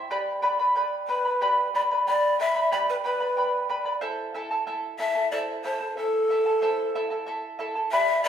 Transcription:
Already playing: charango E4 E5
0.10 charango G4 B4 D5 G5 B5
0.42 charango B4 D5 G5 B5
0.59 charango B4 D5 B5
0.75 charango B4 D5 G5 B5
1.08 pan flute B4, charango B4 D5 G5 B5
1.25 charango B4 D5 B5
1.41 charango G4 B4 D5 G5 B5
1.74 charango B4 D5 G5 B5, pan flute D5
1.91 charango B4 D5 B5
2.07 charango B4 D5 G5 B5, pan flute D5
2.39 charango B4 D5 G5 B5, pan flute E5
2.55 charango B4 D5 B5
2.71 charango G4 B4 D5 G5 B5, pan flute D5
2.90 pan flute B4
3.04 pan flute B4, charango B4 D5 G5 B5
3.20 charango B4 D5 B5
3.37 charango B4 D5 G5 B5
3.69 charango B4 D5 G5 B5
3.85 charango B4 D5 B5
4.01 charango E4 A4 C5 E5 A5
4.34 charango E4 A4 E5 A5
4.51 charango E4 A4 A5
4.67 charango E4 A4 E5 A5
4.99 charango E4 A4 E5 A5, pan flute E5
5.15 charango E4 A4 A5
5.31 charango E4 A4 C5 E5 A5, pan flute D5
5.64 charango E4 A4 E5 A5, pan flute C5
5.81 charango E4 A4 A5
5.97 charango E4 A4 E5 A5, pan flute A4
6.30 charango E4 A4 E5 A5
6.46 charango E4 A4 A5
6.62 charango E4 A4 C5 E5 A5
6.95 charango E4 A4 E5 A5
7.10 charango E4 A4 A5
7.26 charango E4 A4 E5 A5
7.59 charango E4 A4 E5 A5
7.75 charango E4 A4 A5
7.91 charango G4 B4 D5 G5 B5, pan flute E5
8.24 charango B4 D5 G5, pan flute D5

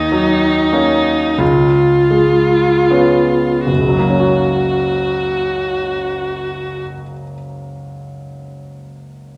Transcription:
Already playing: grand piano D#2, viola D#4
0.12 grand piano F#3
0.73 grand piano A#3 C#4
1.38 grand piano C#2, viola F4
2.11 grand piano G#3
2.90 grand piano B3 C#4
3.67 grand piano F#1, viola F#4
3.78 grand piano C#2
3.89 grand piano F#3
3.99 grand piano A#3
4.10 grand piano C#4
4.20 grand piano F#4

